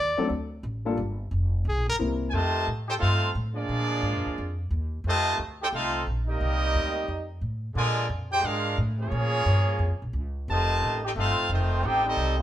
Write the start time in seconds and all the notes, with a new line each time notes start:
Already playing: D#2 D5
0.18 F#3 A3 C4 D4 A4, muted upright bass stroke
0.29 D2
0.63 A1
0.85 G3 A#3 D4 F4 A4
0.97 G1
1.31 F1
1.65 C2 G#4
1.76 A#1
1.88 G1 A#4
1.99 C2 G3 A#3 C4 E4 A#4
2.29 F2 A3 G#5
2.34 C3 D#3 F4 C5 D#5 A5
2.67 A2
2.88 D#4 G4 A4 C5 G5
2.98 G2 A3 C4 D#4 F4 A4 C5 F5
3.35 A2
3.54 F3 G#3 A#3 D4 F4 G#4 D5
3.69 A#2
4.02 G#2
4.15 F2
4.26 D2
4.38 F2
4.71 D#2
5.04 F2 C3 D#3 A3
5.08 F4 C5 D#5 A5
5.38 D2
5.62 D#4 G4 A4 C5 G5
5.72 C2 A3 C4 D#4 F4 A4 C5 F5
6.07 A#1
6.27 G3 A#3 C4 D#4 G4 A#4 D#5
6.41 C2
6.74 D2
7.08 F2
7.41 A2
7.75 A#2 D3 F3 G#3 F4 A#4 D5 G#5
8.09 F2
8.31 D#4 G4 G#4 C5 G5
8.43 G#2 G#3 D4 F4 G#4 A#4 F5
8.78 A2
8.99 F3 C#4 F4 G#4 C#5
9.03 A#3
9.12 A#2
9.46 G2
9.79 F2
9.90 C#2
10.02 A#1
10.13 C#2
10.48 F1 C3 D#3 A3 F4 C5 D#5 A5
10.82 A1
11.04 D#4 G4 A4 C5 G5
11.16 G1 A3 C4 D#4 F4 A4 C5 F5
11.49 F1 D#3 A3 C4 D#4 F4 C5
11.83 A1 C4 D#4 G4 G5
11.87 A4 C5
12.04 G3 C4 D#4 G4 A4 D#5
12.17 C2
12.39 C4